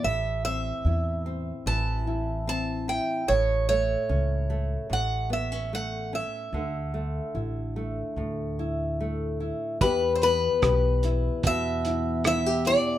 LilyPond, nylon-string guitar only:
\new Staff \with { instrumentName = "Nylon-string guitar" } { \time 4/4 \key e \minor \tempo 4 = 74 << { e8 c'8 e'8 c'4 e'8 c'8 e'8 | r8 a8 cis'8 a4 b16 cis'16 a8 cis'8 | r8 a8 e'8 a4 e'8 a8 e'8 | g'8 b8 g'8 e'4 e'8 e'16 g'16 e'8 | } \\ { a,2 e2 | a,2 a,2 | d2 a,2 | e,2 b,2 | } >> }